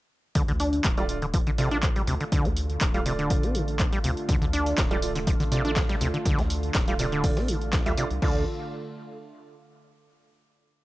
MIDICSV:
0, 0, Header, 1, 6, 480
1, 0, Start_track
1, 0, Key_signature, -1, "minor"
1, 0, Tempo, 491803
1, 346, Time_signature, 4, 2, 24, 8
1, 10584, End_track
2, 0, Start_track
2, 0, Title_t, "Grand piano"
2, 0, Program_c, 0, 0
2, 952, Note_on_c, 0, 57, 93
2, 952, Note_on_c, 0, 65, 85
2, 952, Note_on_c, 0, 74, 101
2, 1007, Note_off_c, 0, 57, 0
2, 1007, Note_off_c, 0, 74, 0
2, 1008, Note_off_c, 0, 65, 0
2, 1066, Note_on_c, 0, 57, 68
2, 1066, Note_on_c, 0, 65, 65
2, 1066, Note_on_c, 0, 74, 76
2, 1128, Note_off_c, 0, 57, 0
2, 1128, Note_off_c, 0, 65, 0
2, 1128, Note_off_c, 0, 74, 0
2, 1545, Note_on_c, 0, 57, 80
2, 1545, Note_on_c, 0, 65, 73
2, 1545, Note_on_c, 0, 74, 91
2, 1645, Note_off_c, 0, 57, 0
2, 1645, Note_off_c, 0, 65, 0
2, 1645, Note_off_c, 0, 74, 0
2, 1672, Note_on_c, 0, 74, 79
2, 1673, Note_on_c, 0, 57, 76
2, 1673, Note_on_c, 0, 65, 69
2, 1727, Note_off_c, 0, 74, 0
2, 1728, Note_off_c, 0, 57, 0
2, 1728, Note_off_c, 0, 65, 0
2, 2873, Note_on_c, 0, 57, 75
2, 2873, Note_on_c, 0, 65, 69
2, 2873, Note_on_c, 0, 77, 83
2, 2928, Note_off_c, 0, 57, 0
2, 2928, Note_off_c, 0, 65, 0
2, 2928, Note_off_c, 0, 77, 0
2, 2985, Note_on_c, 0, 57, 74
2, 2985, Note_on_c, 0, 65, 65
2, 2986, Note_on_c, 0, 74, 80
2, 4762, Note_off_c, 0, 57, 0
2, 4762, Note_off_c, 0, 65, 0
2, 4762, Note_off_c, 0, 74, 0
2, 4792, Note_on_c, 0, 57, 101
2, 4792, Note_on_c, 0, 65, 89
2, 4792, Note_on_c, 0, 74, 112
2, 4847, Note_off_c, 0, 57, 0
2, 4847, Note_off_c, 0, 65, 0
2, 4847, Note_off_c, 0, 74, 0
2, 4905, Note_on_c, 0, 57, 71
2, 4905, Note_on_c, 0, 65, 67
2, 4905, Note_on_c, 0, 74, 82
2, 4967, Note_off_c, 0, 57, 0
2, 4967, Note_off_c, 0, 65, 0
2, 4967, Note_off_c, 0, 74, 0
2, 5385, Note_on_c, 0, 57, 83
2, 5385, Note_on_c, 0, 65, 75
2, 5385, Note_on_c, 0, 74, 92
2, 5484, Note_off_c, 0, 57, 0
2, 5484, Note_off_c, 0, 65, 0
2, 5485, Note_off_c, 0, 74, 0
2, 5513, Note_on_c, 0, 57, 78
2, 5513, Note_on_c, 0, 65, 70
2, 5513, Note_on_c, 0, 74, 87
2, 5568, Note_off_c, 0, 57, 0
2, 5568, Note_off_c, 0, 65, 0
2, 5568, Note_off_c, 0, 74, 0
2, 6712, Note_on_c, 0, 57, 78
2, 6712, Note_on_c, 0, 65, 70
2, 6712, Note_on_c, 0, 77, 83
2, 6767, Note_off_c, 0, 57, 0
2, 6767, Note_off_c, 0, 65, 0
2, 6767, Note_off_c, 0, 77, 0
2, 6825, Note_on_c, 0, 57, 79
2, 6825, Note_on_c, 0, 65, 71
2, 6825, Note_on_c, 0, 74, 81
2, 7647, Note_off_c, 0, 57, 0
2, 7647, Note_off_c, 0, 65, 0
2, 7647, Note_off_c, 0, 74, 0
2, 7672, Note_on_c, 0, 57, 82
2, 7672, Note_on_c, 0, 65, 75
2, 7672, Note_on_c, 0, 76, 90
2, 7727, Note_off_c, 0, 57, 0
2, 7727, Note_off_c, 0, 65, 0
2, 7727, Note_off_c, 0, 76, 0
2, 7784, Note_on_c, 0, 57, 78
2, 7784, Note_on_c, 0, 65, 75
2, 7784, Note_on_c, 0, 74, 89
2, 7847, Note_off_c, 0, 57, 0
2, 7847, Note_off_c, 0, 65, 0
2, 7847, Note_off_c, 0, 74, 0
2, 8024, Note_on_c, 0, 57, 81
2, 8024, Note_on_c, 0, 65, 76
2, 8024, Note_on_c, 0, 74, 91
2, 8206, Note_off_c, 0, 57, 0
2, 8206, Note_off_c, 0, 65, 0
2, 8206, Note_off_c, 0, 74, 0
2, 10584, End_track
3, 0, Start_track
3, 0, Title_t, "Analog synth pad"
3, 0, Program_c, 1, 89
3, 344, Note_on_c, 1, 50, 82
3, 344, Note_on_c, 1, 65, 88
3, 345, Note_on_c, 1, 57, 73
3, 7986, Note_off_c, 1, 50, 0
3, 7986, Note_off_c, 1, 57, 0
3, 7986, Note_off_c, 1, 65, 0
3, 8025, Note_on_c, 1, 65, 82
3, 8026, Note_on_c, 1, 50, 75
3, 8026, Note_on_c, 1, 57, 66
3, 8248, Note_off_c, 1, 65, 0
3, 8249, Note_off_c, 1, 50, 0
3, 8249, Note_off_c, 1, 57, 0
3, 10584, End_track
4, 0, Start_track
4, 0, Title_t, "Acid bass"
4, 0, Program_c, 2, 38
4, 345, Note_on_c, 2, 50, 93
4, 415, Note_off_c, 2, 50, 0
4, 473, Note_on_c, 2, 50, 100
4, 510, Note_off_c, 2, 50, 0
4, 585, Note_on_c, 2, 62, 75
4, 826, Note_on_c, 2, 50, 101
4, 840, Note_off_c, 2, 62, 0
4, 868, Note_off_c, 2, 50, 0
4, 954, Note_on_c, 2, 55, 74
4, 1016, Note_off_c, 2, 55, 0
4, 1194, Note_on_c, 2, 50, 74
4, 1231, Note_off_c, 2, 50, 0
4, 1308, Note_on_c, 2, 53, 79
4, 1349, Note_off_c, 2, 53, 0
4, 1435, Note_on_c, 2, 50, 93
4, 1471, Note_off_c, 2, 50, 0
4, 1547, Note_on_c, 2, 48, 96
4, 1651, Note_off_c, 2, 48, 0
4, 1674, Note_on_c, 2, 62, 103
4, 1735, Note_off_c, 2, 62, 0
4, 1913, Note_on_c, 2, 55, 73
4, 1975, Note_off_c, 2, 55, 0
4, 2026, Note_on_c, 2, 48, 75
4, 2096, Note_off_c, 2, 48, 0
4, 2154, Note_on_c, 2, 50, 75
4, 2191, Note_off_c, 2, 50, 0
4, 2267, Note_on_c, 2, 50, 96
4, 2395, Note_on_c, 2, 60, 73
4, 2410, Note_off_c, 2, 50, 0
4, 2431, Note_off_c, 2, 60, 0
4, 2874, Note_on_c, 2, 55, 71
4, 2936, Note_off_c, 2, 55, 0
4, 2986, Note_on_c, 2, 48, 73
4, 3056, Note_off_c, 2, 48, 0
4, 3114, Note_on_c, 2, 50, 75
4, 3353, Note_on_c, 2, 60, 73
4, 3368, Note_off_c, 2, 50, 0
4, 3465, Note_on_c, 2, 50, 78
4, 3480, Note_off_c, 2, 60, 0
4, 3535, Note_off_c, 2, 50, 0
4, 3833, Note_on_c, 2, 55, 73
4, 3895, Note_off_c, 2, 55, 0
4, 3946, Note_on_c, 2, 48, 77
4, 4016, Note_off_c, 2, 48, 0
4, 4185, Note_on_c, 2, 50, 99
4, 4255, Note_off_c, 2, 50, 0
4, 4312, Note_on_c, 2, 50, 99
4, 4350, Note_off_c, 2, 50, 0
4, 4425, Note_on_c, 2, 62, 72
4, 4665, Note_on_c, 2, 50, 98
4, 4679, Note_off_c, 2, 62, 0
4, 4707, Note_off_c, 2, 50, 0
4, 4793, Note_on_c, 2, 55, 73
4, 4855, Note_off_c, 2, 55, 0
4, 5032, Note_on_c, 2, 50, 76
4, 5070, Note_off_c, 2, 50, 0
4, 5144, Note_on_c, 2, 53, 80
4, 5187, Note_off_c, 2, 53, 0
4, 5271, Note_on_c, 2, 50, 100
4, 5309, Note_off_c, 2, 50, 0
4, 5384, Note_on_c, 2, 48, 100
4, 5490, Note_off_c, 2, 48, 0
4, 5512, Note_on_c, 2, 62, 107
4, 5574, Note_off_c, 2, 62, 0
4, 5752, Note_on_c, 2, 55, 72
4, 5814, Note_off_c, 2, 55, 0
4, 5864, Note_on_c, 2, 48, 80
4, 5935, Note_off_c, 2, 48, 0
4, 5991, Note_on_c, 2, 50, 75
4, 6029, Note_off_c, 2, 50, 0
4, 6104, Note_on_c, 2, 50, 101
4, 6231, Note_on_c, 2, 60, 77
4, 6245, Note_off_c, 2, 50, 0
4, 6269, Note_off_c, 2, 60, 0
4, 6713, Note_on_c, 2, 55, 75
4, 6775, Note_off_c, 2, 55, 0
4, 6825, Note_on_c, 2, 48, 75
4, 6895, Note_off_c, 2, 48, 0
4, 6952, Note_on_c, 2, 50, 75
4, 7192, Note_on_c, 2, 60, 74
4, 7207, Note_off_c, 2, 50, 0
4, 7305, Note_on_c, 2, 50, 77
4, 7320, Note_off_c, 2, 60, 0
4, 7376, Note_off_c, 2, 50, 0
4, 7673, Note_on_c, 2, 55, 71
4, 7735, Note_off_c, 2, 55, 0
4, 7786, Note_on_c, 2, 48, 81
4, 7856, Note_off_c, 2, 48, 0
4, 8025, Note_on_c, 2, 50, 93
4, 8249, Note_off_c, 2, 50, 0
4, 10584, End_track
5, 0, Start_track
5, 0, Title_t, "Analog synth bass"
5, 0, Program_c, 3, 38
5, 346, Note_on_c, 3, 38, 93
5, 445, Note_off_c, 3, 38, 0
5, 472, Note_on_c, 3, 38, 90
5, 785, Note_off_c, 3, 38, 0
5, 825, Note_on_c, 3, 26, 83
5, 1387, Note_off_c, 3, 26, 0
5, 1432, Note_on_c, 3, 33, 84
5, 1985, Note_off_c, 3, 33, 0
5, 2025, Note_on_c, 3, 38, 92
5, 2124, Note_off_c, 3, 38, 0
5, 2266, Note_on_c, 3, 38, 93
5, 2365, Note_off_c, 3, 38, 0
5, 2393, Note_on_c, 3, 38, 93
5, 2706, Note_off_c, 3, 38, 0
5, 2746, Note_on_c, 3, 26, 80
5, 3308, Note_off_c, 3, 26, 0
5, 3352, Note_on_c, 3, 33, 88
5, 3905, Note_off_c, 3, 33, 0
5, 3946, Note_on_c, 3, 38, 92
5, 4045, Note_off_c, 3, 38, 0
5, 4186, Note_on_c, 3, 38, 96
5, 4285, Note_off_c, 3, 38, 0
5, 4312, Note_on_c, 3, 38, 91
5, 4625, Note_off_c, 3, 38, 0
5, 4666, Note_on_c, 3, 26, 82
5, 5228, Note_off_c, 3, 26, 0
5, 5272, Note_on_c, 3, 33, 89
5, 5825, Note_off_c, 3, 33, 0
5, 5866, Note_on_c, 3, 38, 95
5, 5965, Note_off_c, 3, 38, 0
5, 6106, Note_on_c, 3, 38, 95
5, 6205, Note_off_c, 3, 38, 0
5, 6231, Note_on_c, 3, 38, 88
5, 6545, Note_off_c, 3, 38, 0
5, 6586, Note_on_c, 3, 26, 84
5, 7148, Note_off_c, 3, 26, 0
5, 7192, Note_on_c, 3, 33, 86
5, 7667, Note_off_c, 3, 33, 0
5, 7673, Note_on_c, 3, 38, 78
5, 7761, Note_off_c, 3, 38, 0
5, 7913, Note_on_c, 3, 36, 97
5, 8000, Note_off_c, 3, 36, 0
5, 8026, Note_on_c, 3, 38, 97
5, 8249, Note_off_c, 3, 38, 0
5, 10584, End_track
6, 0, Start_track
6, 0, Title_t, "Drums"
6, 344, Note_on_c, 9, 42, 90
6, 345, Note_on_c, 9, 36, 109
6, 441, Note_off_c, 9, 42, 0
6, 443, Note_off_c, 9, 36, 0
6, 472, Note_on_c, 9, 42, 36
6, 569, Note_off_c, 9, 42, 0
6, 584, Note_on_c, 9, 46, 96
6, 681, Note_off_c, 9, 46, 0
6, 712, Note_on_c, 9, 42, 39
6, 809, Note_off_c, 9, 42, 0
6, 824, Note_on_c, 9, 39, 116
6, 824, Note_on_c, 9, 42, 88
6, 825, Note_on_c, 9, 36, 109
6, 921, Note_off_c, 9, 39, 0
6, 922, Note_off_c, 9, 42, 0
6, 923, Note_off_c, 9, 36, 0
6, 951, Note_on_c, 9, 42, 36
6, 1048, Note_off_c, 9, 42, 0
6, 1063, Note_on_c, 9, 46, 100
6, 1161, Note_off_c, 9, 46, 0
6, 1191, Note_on_c, 9, 42, 39
6, 1289, Note_off_c, 9, 42, 0
6, 1304, Note_on_c, 9, 42, 93
6, 1305, Note_on_c, 9, 36, 109
6, 1402, Note_off_c, 9, 42, 0
6, 1403, Note_off_c, 9, 36, 0
6, 1432, Note_on_c, 9, 42, 39
6, 1530, Note_off_c, 9, 42, 0
6, 1545, Note_on_c, 9, 46, 96
6, 1642, Note_off_c, 9, 46, 0
6, 1672, Note_on_c, 9, 42, 40
6, 1770, Note_off_c, 9, 42, 0
6, 1784, Note_on_c, 9, 39, 115
6, 1785, Note_on_c, 9, 36, 112
6, 1785, Note_on_c, 9, 42, 85
6, 1882, Note_off_c, 9, 39, 0
6, 1882, Note_off_c, 9, 42, 0
6, 1883, Note_off_c, 9, 36, 0
6, 1912, Note_on_c, 9, 42, 38
6, 2010, Note_off_c, 9, 42, 0
6, 2025, Note_on_c, 9, 46, 98
6, 2122, Note_off_c, 9, 46, 0
6, 2152, Note_on_c, 9, 42, 39
6, 2250, Note_off_c, 9, 42, 0
6, 2265, Note_on_c, 9, 42, 90
6, 2266, Note_on_c, 9, 36, 120
6, 2363, Note_off_c, 9, 36, 0
6, 2363, Note_off_c, 9, 42, 0
6, 2393, Note_on_c, 9, 42, 37
6, 2490, Note_off_c, 9, 42, 0
6, 2505, Note_on_c, 9, 46, 101
6, 2602, Note_off_c, 9, 46, 0
6, 2632, Note_on_c, 9, 42, 37
6, 2729, Note_off_c, 9, 42, 0
6, 2744, Note_on_c, 9, 39, 118
6, 2744, Note_on_c, 9, 42, 87
6, 2745, Note_on_c, 9, 36, 113
6, 2841, Note_off_c, 9, 39, 0
6, 2841, Note_off_c, 9, 42, 0
6, 2843, Note_off_c, 9, 36, 0
6, 2872, Note_on_c, 9, 42, 37
6, 2970, Note_off_c, 9, 42, 0
6, 2984, Note_on_c, 9, 46, 99
6, 3082, Note_off_c, 9, 46, 0
6, 3112, Note_on_c, 9, 42, 39
6, 3210, Note_off_c, 9, 42, 0
6, 3223, Note_on_c, 9, 42, 91
6, 3226, Note_on_c, 9, 36, 114
6, 3321, Note_off_c, 9, 42, 0
6, 3323, Note_off_c, 9, 36, 0
6, 3351, Note_on_c, 9, 42, 38
6, 3449, Note_off_c, 9, 42, 0
6, 3463, Note_on_c, 9, 46, 97
6, 3561, Note_off_c, 9, 46, 0
6, 3591, Note_on_c, 9, 42, 39
6, 3689, Note_off_c, 9, 42, 0
6, 3703, Note_on_c, 9, 39, 116
6, 3703, Note_on_c, 9, 42, 85
6, 3706, Note_on_c, 9, 36, 115
6, 3800, Note_off_c, 9, 39, 0
6, 3801, Note_off_c, 9, 42, 0
6, 3803, Note_off_c, 9, 36, 0
6, 3831, Note_on_c, 9, 42, 37
6, 3929, Note_off_c, 9, 42, 0
6, 3944, Note_on_c, 9, 46, 106
6, 4042, Note_off_c, 9, 46, 0
6, 4071, Note_on_c, 9, 42, 39
6, 4169, Note_off_c, 9, 42, 0
6, 4185, Note_on_c, 9, 42, 88
6, 4185, Note_on_c, 9, 54, 90
6, 4186, Note_on_c, 9, 36, 118
6, 4282, Note_off_c, 9, 42, 0
6, 4283, Note_off_c, 9, 54, 0
6, 4284, Note_off_c, 9, 36, 0
6, 4313, Note_on_c, 9, 42, 35
6, 4410, Note_off_c, 9, 42, 0
6, 4425, Note_on_c, 9, 46, 103
6, 4425, Note_on_c, 9, 54, 67
6, 4522, Note_off_c, 9, 46, 0
6, 4523, Note_off_c, 9, 54, 0
6, 4552, Note_on_c, 9, 42, 41
6, 4649, Note_off_c, 9, 42, 0
6, 4664, Note_on_c, 9, 38, 111
6, 4664, Note_on_c, 9, 39, 113
6, 4664, Note_on_c, 9, 42, 87
6, 4664, Note_on_c, 9, 54, 84
6, 4666, Note_on_c, 9, 36, 113
6, 4761, Note_off_c, 9, 39, 0
6, 4762, Note_off_c, 9, 38, 0
6, 4762, Note_off_c, 9, 42, 0
6, 4762, Note_off_c, 9, 54, 0
6, 4763, Note_off_c, 9, 36, 0
6, 4792, Note_on_c, 9, 42, 35
6, 4889, Note_off_c, 9, 42, 0
6, 4903, Note_on_c, 9, 46, 106
6, 4904, Note_on_c, 9, 54, 71
6, 5001, Note_off_c, 9, 46, 0
6, 5002, Note_off_c, 9, 54, 0
6, 5031, Note_on_c, 9, 42, 42
6, 5032, Note_off_c, 9, 42, 0
6, 5032, Note_on_c, 9, 42, 36
6, 5130, Note_off_c, 9, 42, 0
6, 5143, Note_on_c, 9, 54, 85
6, 5144, Note_on_c, 9, 42, 90
6, 5146, Note_on_c, 9, 36, 116
6, 5241, Note_off_c, 9, 54, 0
6, 5242, Note_off_c, 9, 42, 0
6, 5243, Note_off_c, 9, 36, 0
6, 5271, Note_on_c, 9, 42, 42
6, 5272, Note_off_c, 9, 42, 0
6, 5272, Note_on_c, 9, 42, 38
6, 5370, Note_off_c, 9, 42, 0
6, 5384, Note_on_c, 9, 54, 67
6, 5385, Note_on_c, 9, 46, 106
6, 5482, Note_off_c, 9, 46, 0
6, 5482, Note_off_c, 9, 54, 0
6, 5513, Note_on_c, 9, 42, 38
6, 5610, Note_off_c, 9, 42, 0
6, 5624, Note_on_c, 9, 38, 109
6, 5624, Note_on_c, 9, 54, 85
6, 5625, Note_on_c, 9, 36, 120
6, 5625, Note_on_c, 9, 39, 113
6, 5625, Note_on_c, 9, 42, 84
6, 5722, Note_off_c, 9, 38, 0
6, 5722, Note_off_c, 9, 54, 0
6, 5723, Note_off_c, 9, 36, 0
6, 5723, Note_off_c, 9, 39, 0
6, 5723, Note_off_c, 9, 42, 0
6, 5752, Note_on_c, 9, 38, 54
6, 5753, Note_on_c, 9, 42, 37
6, 5850, Note_off_c, 9, 38, 0
6, 5851, Note_off_c, 9, 42, 0
6, 5864, Note_on_c, 9, 54, 69
6, 5865, Note_on_c, 9, 46, 107
6, 5962, Note_off_c, 9, 54, 0
6, 5963, Note_off_c, 9, 46, 0
6, 5993, Note_on_c, 9, 42, 39
6, 6090, Note_off_c, 9, 42, 0
6, 6105, Note_on_c, 9, 42, 86
6, 6105, Note_on_c, 9, 54, 85
6, 6106, Note_on_c, 9, 36, 120
6, 6202, Note_off_c, 9, 42, 0
6, 6202, Note_off_c, 9, 54, 0
6, 6203, Note_off_c, 9, 36, 0
6, 6232, Note_on_c, 9, 38, 47
6, 6232, Note_on_c, 9, 42, 36
6, 6330, Note_off_c, 9, 38, 0
6, 6330, Note_off_c, 9, 42, 0
6, 6345, Note_on_c, 9, 46, 108
6, 6345, Note_on_c, 9, 54, 67
6, 6442, Note_off_c, 9, 54, 0
6, 6443, Note_off_c, 9, 46, 0
6, 6472, Note_on_c, 9, 42, 37
6, 6569, Note_off_c, 9, 42, 0
6, 6584, Note_on_c, 9, 38, 112
6, 6584, Note_on_c, 9, 39, 112
6, 6584, Note_on_c, 9, 42, 85
6, 6584, Note_on_c, 9, 54, 85
6, 6586, Note_on_c, 9, 36, 116
6, 6681, Note_off_c, 9, 39, 0
6, 6681, Note_off_c, 9, 42, 0
6, 6682, Note_off_c, 9, 38, 0
6, 6682, Note_off_c, 9, 54, 0
6, 6683, Note_off_c, 9, 36, 0
6, 6711, Note_on_c, 9, 42, 36
6, 6713, Note_off_c, 9, 42, 0
6, 6713, Note_on_c, 9, 42, 44
6, 6811, Note_off_c, 9, 42, 0
6, 6824, Note_on_c, 9, 46, 106
6, 6825, Note_on_c, 9, 54, 70
6, 6921, Note_off_c, 9, 46, 0
6, 6923, Note_off_c, 9, 54, 0
6, 6951, Note_on_c, 9, 42, 37
6, 7049, Note_off_c, 9, 42, 0
6, 7064, Note_on_c, 9, 42, 86
6, 7065, Note_on_c, 9, 36, 118
6, 7065, Note_on_c, 9, 46, 75
6, 7162, Note_off_c, 9, 42, 0
6, 7162, Note_off_c, 9, 46, 0
6, 7163, Note_off_c, 9, 36, 0
6, 7192, Note_on_c, 9, 38, 57
6, 7192, Note_on_c, 9, 42, 38
6, 7289, Note_off_c, 9, 38, 0
6, 7289, Note_off_c, 9, 42, 0
6, 7304, Note_on_c, 9, 46, 105
6, 7304, Note_on_c, 9, 54, 67
6, 7402, Note_off_c, 9, 46, 0
6, 7402, Note_off_c, 9, 54, 0
6, 7432, Note_on_c, 9, 42, 37
6, 7530, Note_off_c, 9, 42, 0
6, 7543, Note_on_c, 9, 38, 116
6, 7543, Note_on_c, 9, 54, 83
6, 7544, Note_on_c, 9, 39, 110
6, 7544, Note_on_c, 9, 42, 81
6, 7546, Note_on_c, 9, 36, 125
6, 7641, Note_off_c, 9, 38, 0
6, 7641, Note_off_c, 9, 39, 0
6, 7641, Note_off_c, 9, 54, 0
6, 7642, Note_off_c, 9, 42, 0
6, 7643, Note_off_c, 9, 36, 0
6, 7672, Note_on_c, 9, 42, 45
6, 7770, Note_off_c, 9, 42, 0
6, 7784, Note_on_c, 9, 46, 108
6, 7785, Note_on_c, 9, 54, 71
6, 7881, Note_off_c, 9, 46, 0
6, 7882, Note_off_c, 9, 54, 0
6, 7911, Note_on_c, 9, 42, 36
6, 8009, Note_off_c, 9, 42, 0
6, 8024, Note_on_c, 9, 49, 85
6, 8026, Note_on_c, 9, 36, 108
6, 8122, Note_off_c, 9, 49, 0
6, 8123, Note_off_c, 9, 36, 0
6, 10584, End_track
0, 0, End_of_file